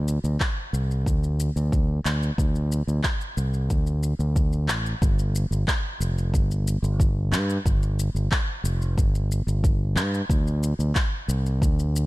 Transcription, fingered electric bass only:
0.00 0.17 D2 medium
0.24 0.36 D2 medium
0.73 1.06 C2 medium
1.06 1.49 D2 medium
1.56 1.98 D2 medium
2.05 2.29 D2 medium
2.38 2.81 D2 medium
2.88 3.00 D2 medium
3.37 3.70 C2 medium
3.70 4.12 D2 medium
4.19 4.69 D2 medium
4.69 4.93 A1 loud
5.02 5.44 G1 medium
5.51 5.63 G1 medium
6.00 6.33 F1 medium
6.33 6.76 G1 medium
6.83 7.34 G1 medium
7.32 7.57 G2 loud
7.65 8.08 G1 medium
8.15 8.27 G1 medium
8.64 8.98 F1 medium
8.98 9.40 G1 medium
9.47 9.98 G1 medium
9.96 10.20 G2 loud
10.29 10.72 D2 loud
10.79 10.91 D2 medium
11.28 11.62 C2 medium
11.62 12.04 D2 medium

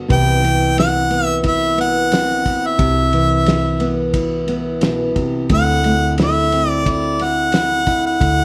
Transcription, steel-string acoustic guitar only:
0.08 0.43 C3 medium
0.08 0.42 E3 medium
0.08 1.10 B3 medium
0.08 0.77 C4 medium
0.08 1.43 E4 medium
0.43 3.13 E3 medium
0.77 2.12 C4 medium
1.11 1.76 B3 medium
1.43 2.46 E4 medium
1.78 2.75 B3 medium
2.12 3.83 C4 medium
2.47 4.14 E4 medium
2.78 3.12 C3 medium
3.14 5.50 E3 medium
3.80 4.47 B3 medium
4.14 5.52 E4 medium
4.48 5.46 B3 medium
4.81 5.15 B2 medium
5.15 5.50 C3 medium
5.50 8.19 D3 medium
5.50 5.85 A3 medium
5.50 6.52 C4 medium
5.50 6.19 E4 medium
5.85 8.18 A3 medium
6.19 6.87 E4 medium
6.53 7.20 C4 medium
6.87 7.54 E4 medium
7.21 8.18 C4 medium
7.54 7.87 E4 medium
7.87 8.45 E4 medium
8.20 8.45 D3 medium

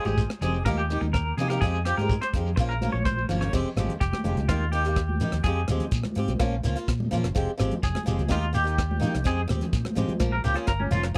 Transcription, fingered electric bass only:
0.05 0.26 G#1 medium
0.41 0.62 F1 medium
0.65 0.96 D#2 medium
1.02 1.32 D#2 medium
1.37 1.58 C3 medium
1.62 1.92 F2 medium
1.98 2.18 G#2 medium
2.34 2.54 F2 medium
2.58 2.88 A#1 medium
2.94 3.24 A#1 medium
3.29 3.49 G1 medium
3.53 3.63 F1 loud
3.76 3.87 G#1 medium
4.01 4.11 F1 medium
4.24 4.35 F1 medium
4.36 4.47 C#2 medium
4.49 5.19 D#2 loud
5.33 5.43 D#2 medium
5.44 5.64 F2 loud
5.69 5.79 D#2 medium
5.92 6.02 A#2 medium
6.16 6.26 G#2 loud
6.28 6.38 B1 medium
6.40 6.60 A#1 medium
6.64 6.74 C#2 medium
6.88 7.08 A#2 medium
7.12 7.26 A#2 medium
7.24 7.34 G1 medium
7.36 7.46 F1 loud
7.60 7.70 G#1 medium
7.83 7.93 F1 medium
8.08 8.17 F1 medium
8.19 8.29 C#2 medium
8.31 9.00 D#2 loud
9.15 9.25 C2 medium
9.26 9.46 F2 loud
9.50 9.60 D#2 medium
9.73 9.83 A#2 medium
9.97 10.07 G#2 loud
10.09 10.19 F3 medium
10.20 10.40 A#1 loud
10.44 10.54 C#2 medium
10.68 10.90 G1 medium
10.91 11.13 F1 medium

